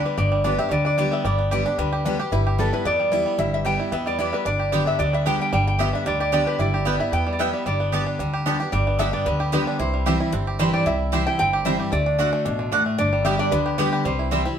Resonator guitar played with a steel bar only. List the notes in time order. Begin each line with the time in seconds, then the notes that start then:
0.06 B4
0.18 D5
0.45 D5
0.59 E5
0.69 C#5 D5
0.86 D5
0.99 D5
1.13 E5
1.26 D5
1.52 D5
1.79 B4
2.32 B4
2.60 A4
2.74 B4
2.86 D5
3.39 E5
3.54 E5
3.66 G5
3.93 E5
4.07 D5
4.20 D5
4.34 B4
4.46 D5
4.87 E5
4.99 D5
5.14 E5
5.27 G5
5.42 G5
5.54 G5
5.67 G5
5.80 E5
5.95 E5
6.07 D5
6.21 D5
6.33 D5
6.47 B4
6.60 D5
7.01 E5
7.13 G5
7.33 D5
7.40 E5
7.67 D5
8.72 D5
8.99 E5
9.13 D5
9.26 B4
9.53 B4
9.80 C5
10.73 D5
10.87 E5
11.27 G5
11.39 G5
11.66 E5
11.92 D5
12.98 D5
13.25 E5
13.39 D5
13.52 B4
13.79 B4
14.06 C5